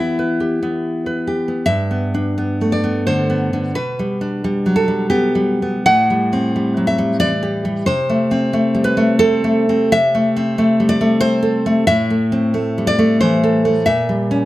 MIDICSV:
0, 0, Header, 1, 2, 480
1, 0, Start_track
1, 0, Tempo, 883652
1, 459, Tempo, 819672
1, 939, Tempo, 701754
1, 940, Time_signature, 3, 2, 24, 8
1, 1899, Tempo, 679502
1, 3339, Tempo, 755668
1, 3819, Tempo, 666667
1, 6219, Tempo, 745342
1, 6699, Tempo, 639659
1, 7659, Tempo, 665188
1, 9990, End_track
2, 0, Start_track
2, 0, Title_t, "Nylon-string guitar"
2, 0, Program_c, 0, 24
2, 0, Note_on_c, 0, 52, 41
2, 0, Note_on_c, 0, 59, 30
2, 0, Note_on_c, 0, 64, 30
2, 0, Note_on_c, 0, 67, 36
2, 0, Note_on_c, 0, 71, 31
2, 0, Note_on_c, 0, 76, 44
2, 96, Note_off_c, 0, 71, 0
2, 102, Note_on_c, 0, 71, 31
2, 212, Note_off_c, 0, 67, 0
2, 219, Note_on_c, 0, 67, 30
2, 333, Note_off_c, 0, 59, 0
2, 340, Note_on_c, 0, 59, 31
2, 579, Note_off_c, 0, 71, 0
2, 586, Note_on_c, 0, 71, 33
2, 687, Note_off_c, 0, 76, 0
2, 703, Note_off_c, 0, 67, 0
2, 710, Note_on_c, 0, 67, 32
2, 713, Note_off_c, 0, 64, 0
2, 824, Note_off_c, 0, 59, 0
2, 831, Note_on_c, 0, 59, 29
2, 920, Note_off_c, 0, 52, 0
2, 935, Note_on_c, 0, 76, 79
2, 939, Note_on_c, 0, 43, 50
2, 940, Note_off_c, 0, 59, 0
2, 940, Note_off_c, 0, 67, 0
2, 941, Note_off_c, 0, 71, 0
2, 1105, Note_on_c, 0, 59, 35
2, 1267, Note_on_c, 0, 62, 40
2, 1418, Note_off_c, 0, 59, 0
2, 1426, Note_on_c, 0, 59, 37
2, 1587, Note_on_c, 0, 57, 33
2, 1633, Note_off_c, 0, 76, 0
2, 1662, Note_on_c, 0, 74, 57
2, 1732, Note_off_c, 0, 59, 0
2, 1741, Note_on_c, 0, 59, 39
2, 1890, Note_off_c, 0, 74, 0
2, 1898, Note_on_c, 0, 72, 71
2, 1904, Note_on_c, 0, 50, 42
2, 1983, Note_off_c, 0, 62, 0
2, 2052, Note_off_c, 0, 59, 0
2, 2061, Note_on_c, 0, 59, 40
2, 2217, Note_off_c, 0, 50, 0
2, 2226, Note_on_c, 0, 50, 37
2, 2304, Note_off_c, 0, 57, 0
2, 2353, Note_off_c, 0, 43, 0
2, 2361, Note_off_c, 0, 72, 0
2, 2381, Note_off_c, 0, 59, 0
2, 2382, Note_on_c, 0, 71, 76
2, 2383, Note_off_c, 0, 50, 0
2, 2388, Note_on_c, 0, 47, 50
2, 2552, Note_on_c, 0, 55, 36
2, 2706, Note_on_c, 0, 62, 45
2, 2862, Note_off_c, 0, 55, 0
2, 2870, Note_on_c, 0, 55, 41
2, 3023, Note_on_c, 0, 54, 37
2, 3070, Note_off_c, 0, 71, 0
2, 3092, Note_on_c, 0, 69, 65
2, 3170, Note_off_c, 0, 55, 0
2, 3178, Note_on_c, 0, 55, 41
2, 3328, Note_off_c, 0, 69, 0
2, 3332, Note_on_c, 0, 67, 69
2, 3335, Note_off_c, 0, 62, 0
2, 3338, Note_on_c, 0, 59, 44
2, 3487, Note_off_c, 0, 55, 0
2, 3495, Note_on_c, 0, 55, 42
2, 3659, Note_off_c, 0, 59, 0
2, 3667, Note_on_c, 0, 59, 41
2, 3744, Note_off_c, 0, 54, 0
2, 3797, Note_off_c, 0, 67, 0
2, 3798, Note_off_c, 0, 47, 0
2, 3816, Note_on_c, 0, 78, 96
2, 3820, Note_off_c, 0, 55, 0
2, 3820, Note_on_c, 0, 45, 55
2, 3823, Note_off_c, 0, 59, 0
2, 3992, Note_on_c, 0, 55, 41
2, 4154, Note_on_c, 0, 60, 48
2, 4311, Note_off_c, 0, 55, 0
2, 4319, Note_on_c, 0, 55, 43
2, 4472, Note_on_c, 0, 54, 39
2, 4519, Note_off_c, 0, 78, 0
2, 4545, Note_on_c, 0, 76, 71
2, 4618, Note_off_c, 0, 55, 0
2, 4627, Note_on_c, 0, 55, 48
2, 4775, Note_off_c, 0, 76, 0
2, 4781, Note_on_c, 0, 74, 90
2, 4784, Note_off_c, 0, 54, 0
2, 4787, Note_on_c, 0, 52, 46
2, 4867, Note_off_c, 0, 60, 0
2, 4945, Note_on_c, 0, 67, 47
2, 5096, Note_off_c, 0, 55, 0
2, 5105, Note_on_c, 0, 55, 43
2, 5235, Note_off_c, 0, 45, 0
2, 5242, Note_off_c, 0, 74, 0
2, 5259, Note_on_c, 0, 72, 89
2, 5264, Note_off_c, 0, 52, 0
2, 5264, Note_off_c, 0, 67, 0
2, 5265, Note_off_c, 0, 55, 0
2, 5266, Note_on_c, 0, 48, 64
2, 5427, Note_on_c, 0, 57, 45
2, 5583, Note_on_c, 0, 60, 52
2, 5733, Note_off_c, 0, 57, 0
2, 5742, Note_on_c, 0, 57, 46
2, 5895, Note_on_c, 0, 55, 45
2, 5944, Note_off_c, 0, 72, 0
2, 5964, Note_on_c, 0, 71, 80
2, 6048, Note_off_c, 0, 57, 0
2, 6057, Note_on_c, 0, 57, 49
2, 6206, Note_off_c, 0, 71, 0
2, 6215, Note_off_c, 0, 60, 0
2, 6215, Note_on_c, 0, 69, 94
2, 6223, Note_on_c, 0, 60, 53
2, 6369, Note_off_c, 0, 57, 0
2, 6377, Note_on_c, 0, 57, 50
2, 6531, Note_off_c, 0, 60, 0
2, 6538, Note_on_c, 0, 60, 52
2, 6623, Note_off_c, 0, 55, 0
2, 6676, Note_off_c, 0, 48, 0
2, 6679, Note_off_c, 0, 69, 0
2, 6686, Note_on_c, 0, 76, 104
2, 6689, Note_on_c, 0, 48, 63
2, 6698, Note_off_c, 0, 60, 0
2, 6700, Note_off_c, 0, 57, 0
2, 6853, Note_on_c, 0, 57, 48
2, 7017, Note_on_c, 0, 60, 56
2, 7171, Note_off_c, 0, 57, 0
2, 7180, Note_on_c, 0, 57, 54
2, 7342, Note_on_c, 0, 55, 45
2, 7384, Note_off_c, 0, 76, 0
2, 7410, Note_on_c, 0, 74, 89
2, 7491, Note_off_c, 0, 57, 0
2, 7500, Note_on_c, 0, 57, 51
2, 7645, Note_off_c, 0, 60, 0
2, 7645, Note_off_c, 0, 74, 0
2, 7648, Note_on_c, 0, 72, 100
2, 7654, Note_on_c, 0, 60, 57
2, 7807, Note_on_c, 0, 69, 50
2, 7968, Note_off_c, 0, 57, 0
2, 7976, Note_on_c, 0, 57, 47
2, 8057, Note_off_c, 0, 55, 0
2, 8101, Note_off_c, 0, 48, 0
2, 8111, Note_off_c, 0, 72, 0
2, 8128, Note_on_c, 0, 76, 103
2, 8131, Note_off_c, 0, 69, 0
2, 8132, Note_off_c, 0, 57, 0
2, 8133, Note_off_c, 0, 60, 0
2, 8134, Note_on_c, 0, 45, 65
2, 8296, Note_on_c, 0, 57, 44
2, 8453, Note_on_c, 0, 60, 55
2, 8602, Note_off_c, 0, 57, 0
2, 8611, Note_on_c, 0, 57, 45
2, 8783, Note_on_c, 0, 55, 42
2, 8824, Note_off_c, 0, 76, 0
2, 8851, Note_on_c, 0, 74, 89
2, 8924, Note_off_c, 0, 57, 0
2, 8933, Note_on_c, 0, 57, 49
2, 9083, Note_off_c, 0, 74, 0
2, 9092, Note_on_c, 0, 72, 90
2, 9097, Note_on_c, 0, 52, 52
2, 9175, Note_off_c, 0, 60, 0
2, 9257, Note_on_c, 0, 69, 53
2, 9404, Note_off_c, 0, 57, 0
2, 9413, Note_on_c, 0, 57, 50
2, 9497, Note_off_c, 0, 55, 0
2, 9544, Note_off_c, 0, 45, 0
2, 9553, Note_off_c, 0, 72, 0
2, 9562, Note_on_c, 0, 76, 92
2, 9566, Note_off_c, 0, 52, 0
2, 9569, Note_on_c, 0, 46, 65
2, 9574, Note_off_c, 0, 57, 0
2, 9576, Note_off_c, 0, 69, 0
2, 9730, Note_on_c, 0, 55, 43
2, 9888, Note_on_c, 0, 61, 49
2, 9990, Note_off_c, 0, 46, 0
2, 9990, Note_off_c, 0, 55, 0
2, 9990, Note_off_c, 0, 61, 0
2, 9990, Note_off_c, 0, 76, 0
2, 9990, End_track
0, 0, End_of_file